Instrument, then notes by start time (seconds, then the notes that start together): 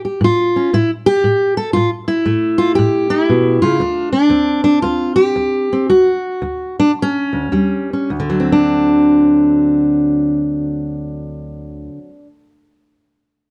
steel-string acoustic guitar
Already playing: A2
0.05 G4
0.21 A2 F4
0.56 C#4
0.73 A2 E4
1.06 G4
1.24 A2
1.57 A4
1.73 A2 F4
2.08 E4
2.25 A2 A3
2.58 F4
2.75 A2 G4
3.10 E4
3.29 B2
3.62 C#3 F4
3.80 D2 D4
4.13 D4
4.29 D2 C4
4.64 D4
4.82 D2 F4
5.16 G4
5.36 D2
5.73 C4
5.90 D2 F#4
6.42 D2
6.80 D4
7.02 C#4
7.33 D2
7.52 D#2 G3
7.93 C#4
8.10 D2
8.20 D3
8.30 F#3
8.40 C4
8.52 D4